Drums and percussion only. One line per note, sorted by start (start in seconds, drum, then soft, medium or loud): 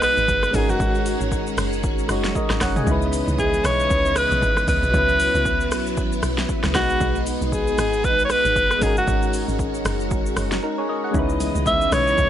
0.02 cross-stick medium
0.02 open hi-hat medium
0.02 shaker medium
0.17 shaker medium
0.28 kick loud
0.28 shaker medium
0.43 cross-stick medium
0.43 shaker medium
0.54 kick loud
0.54 open hi-hat medium
0.54 shaker loud
0.69 shaker medium
0.80 kick loud
0.80 shaker medium
0.95 shaker soft
1.06 open hi-hat medium
1.06 shaker loud
1.21 shaker medium
1.32 kick loud
1.32 shaker medium
1.47 shaker medium
1.58 cross-stick loud
1.58 open hi-hat medium
1.58 shaker loud
1.73 shaker medium
1.83 kick loud
1.83 shaker medium
1.99 shaker medium
2.09 cross-stick medium
2.09 open hi-hat medium
2.09 shaker medium
2.24 snare medium
2.24 shaker medium
2.35 kick loud
2.35 shaker medium
2.50 cross-stick medium
2.50 snare medium
2.50 shaker soft
2.61 kick loud
2.61 cross-stick loud
2.61 snare medium
2.61 open hi-hat medium
2.61 shaker loud
2.76 mid tom medium
2.76 shaker soft
2.87 kick loud
2.87 shaker medium
3.02 shaker soft
3.13 open hi-hat medium
3.13 shaker loud
3.28 shaker medium
3.39 kick loud
3.39 shaker medium
3.54 shaker medium
3.65 cross-stick loud
3.65 open hi-hat medium
3.65 shaker loud
3.80 shaker medium
3.90 kick loud
3.90 shaker medium
4.05 shaker medium
4.16 cross-stick medium
4.16 open hi-hat medium
4.16 shaker medium
4.31 shaker medium
4.42 kick loud
4.42 shaker medium
4.57 cross-stick medium
4.57 shaker medium
4.68 kick loud
4.68 open hi-hat medium
4.68 shaker loud
4.83 shaker medium
4.94 kick loud
4.94 shaker medium
5.09 shaker soft
5.20 open hi-hat medium
5.20 shaker loud
5.35 shaker medium
5.45 kick loud
5.45 shaker medium
5.61 shaker medium
5.72 cross-stick medium
5.72 open hi-hat medium
5.72 shaker loud
5.86 shaker medium
5.97 kick loud
5.97 shaker medium
6.12 shaker medium
6.23 cross-stick medium
6.23 open hi-hat medium
6.23 shaker loud
6.38 snare medium
6.38 shaker medium
6.49 kick loud
6.49 shaker medium
6.64 cross-stick medium
6.64 snare medium
6.64 shaker soft
6.75 kick loud
6.75 cross-stick loud
6.75 snare medium
6.75 open hi-hat medium
6.75 shaker loud
6.90 shaker soft
7.01 kick loud
7.01 shaker medium
7.16 shaker soft
7.27 open hi-hat medium
7.27 shaker loud
7.42 shaker medium
7.52 kick loud
7.52 shaker medium
7.67 shaker medium
7.78 cross-stick loud
7.78 open hi-hat medium
7.78 shaker loud
7.93 shaker medium
8.04 kick loud
8.04 shaker medium
8.19 shaker medium
8.30 cross-stick medium
8.30 open hi-hat medium
8.30 shaker medium
8.45 shaker medium
8.56 kick loud
8.56 shaker medium
8.71 cross-stick medium
8.71 shaker medium
8.82 kick loud
8.82 open hi-hat medium
8.82 shaker loud
8.97 shaker soft
9.08 kick loud
9.08 shaker medium
9.22 shaker soft
9.33 open hi-hat medium
9.33 shaker loud
9.48 shaker medium
9.59 kick loud
9.59 shaker medium
9.74 shaker medium
9.85 cross-stick loud
9.85 open hi-hat medium
9.85 shaker loud
10.00 shaker medium
10.11 kick loud
10.11 shaker medium
10.26 shaker medium
10.37 cross-stick medium
10.37 open hi-hat medium
10.37 shaker medium
10.52 snare medium
10.52 shaker medium
11.14 kick loud
11.14 shaker medium
11.29 shaker soft
11.40 open hi-hat medium
11.40 high conga medium
11.40 shaker loud
11.55 high conga medium
11.55 shaker medium
11.66 kick loud
11.66 low conga medium
11.66 shaker medium
11.81 shaker medium
11.92 cross-stick loud
11.92 open hi-hat medium
11.92 high conga medium
11.92 low conga medium
11.92 shaker loud
12.07 shaker medium
12.18 kick loud
12.18 shaker medium